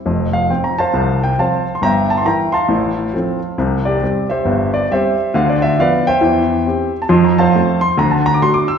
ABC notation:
X:1
M:4/4
L:1/16
Q:"Swing" 1/4=136
K:F
V:1 name="Grand piano"
z2 f2 g b [cfa]4 g2 [cfa]3 c' | [egb]2 a c' [egb]2 [fac']8- [fac']2 | z2 [Gd]4 [Gce]4 d2 [Gce]4 | f d e2 [=Bdf]2 [ceg]8- [ceg] a |
c' b [cfa]4 c'2 b a b d' c' d' e' z |]
V:2 name="Grand piano" clef=bass
[F,,,F,,]4 [F,CF]4 [C,,C,]4 [F,CF]4 | [G,,,G,,]4 [E,EB]4 [A,,,A,,]4 [F,CA]4 | [C,,C,]4 [G,CG]4 [G,,,G,,]4 [G,C]4 | [D,,D,]4 [F,=B,]4 [E,,E,]4 [CG]4 |
[F,,F,]4 [A,CF]4 [D,,D,]4 [A,D^F]4 |]